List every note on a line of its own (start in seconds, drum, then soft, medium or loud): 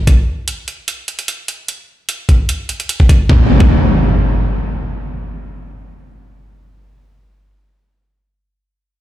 0.07 kick loud
0.07 closed hi-hat medium
0.48 closed hi-hat medium
0.68 closed hi-hat soft
0.88 closed hi-hat medium
1.08 closed hi-hat soft
1.19 closed hi-hat medium
1.28 closed hi-hat medium
1.48 closed hi-hat medium
1.68 closed hi-hat medium
2.09 closed hi-hat medium
2.29 kick medium
2.29 closed hi-hat soft
2.49 closed hi-hat medium
2.69 closed hi-hat soft
2.80 closed hi-hat medium
2.89 closed hi-hat medium
3.00 kick medium
3.09 kick medium
3.09 closed hi-hat medium
3.29 kick loud
3.29 impact medium
3.60 kick loud